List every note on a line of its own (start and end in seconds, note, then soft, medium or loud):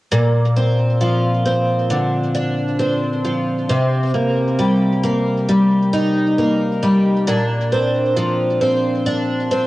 0.11 3.69 A#2 medium
0.56 1.45 C4 soft
1.01 3.24 F3 soft
1.46 2.79 C4 soft
1.90 3.69 D3 medium
2.35 3.78 D4 medium
2.79 4.14 C4 medium
3.25 3.78 F3 soft
3.69 7.27 C3 medium
4.14 5.03 A#3 medium
4.59 5.47 G3 soft
5.03 6.37 A#3 medium
5.48 6.81 G3 medium
5.93 7.27 D#4 medium
6.38 7.72 A#3 soft
6.82 7.36 G3 medium
7.27 9.67 A#2 medium
7.27 9.05 D4 medium
7.72 8.61 C4 medium
8.17 9.67 F3 medium
8.61 9.51 C4 medium
9.06 9.67 D4 medium
9.51 9.67 C4 medium